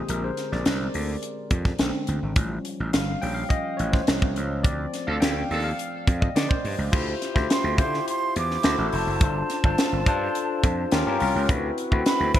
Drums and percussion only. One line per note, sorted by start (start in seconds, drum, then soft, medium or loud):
0.09 closed hi-hat medium
0.37 snare soft
0.37 closed hi-hat medium
0.52 snare soft
0.66 snare loud
0.66 closed hi-hat medium
0.94 open hi-hat medium
1.23 closed hi-hat medium
1.51 kick medium
1.51 closed hi-hat medium
1.65 kick medium
1.65 snare soft
1.79 snare loud
1.79 closed hi-hat medium
2.07 closed hi-hat medium
2.36 kick loud
2.36 closed hi-hat medium
2.65 closed hi-hat medium
2.93 snare loud
2.93 closed hi-hat medium
3.22 open hi-hat medium
3.50 kick medium
3.50 closed hi-hat medium
3.79 closed hi-hat medium
3.93 kick medium
3.93 snare soft
4.07 snare loud
4.07 closed hi-hat medium
4.22 kick medium
4.36 closed hi-hat medium
4.64 kick loud
4.64 closed hi-hat medium
4.94 snare soft
4.94 closed hi-hat medium
5.22 snare loud
5.22 closed hi-hat loud
5.51 open hi-hat medium
5.79 closed hi-hat medium
6.07 kick medium
6.07 closed hi-hat medium
6.22 kick medium
6.36 snare loud
6.36 closed hi-hat medium
6.51 kick loud
6.65 open hi-hat medium
6.93 kick loud
6.93 crash loud
7.22 snare soft
7.22 closed hi-hat medium
7.36 kick medium
7.36 snare soft
7.50 snare loud
7.50 closed hi-hat loud
7.78 kick loud
7.78 closed hi-hat medium
7.94 snare soft
8.08 closed hi-hat medium
8.36 closed hi-hat medium
8.51 snare soft
8.63 snare loud
8.63 closed hi-hat medium
8.92 open hi-hat medium
9.21 kick loud
9.21 closed hi-hat medium
9.50 snare soft
9.50 closed hi-hat medium
9.64 kick medium
9.78 snare loud
9.78 closed hi-hat medium
10.06 kick medium
10.06 closed hi-hat medium
10.35 closed hi-hat medium
10.63 kick medium
10.63 closed hi-hat medium
10.92 snare loud
10.92 closed hi-hat medium
11.20 open hi-hat medium
11.49 kick loud
11.49 closed hi-hat loud
11.78 closed hi-hat medium
11.92 kick medium
12.06 snare loud
12.06 closed hi-hat loud
12.35 kick medium
12.35 closed hi-hat medium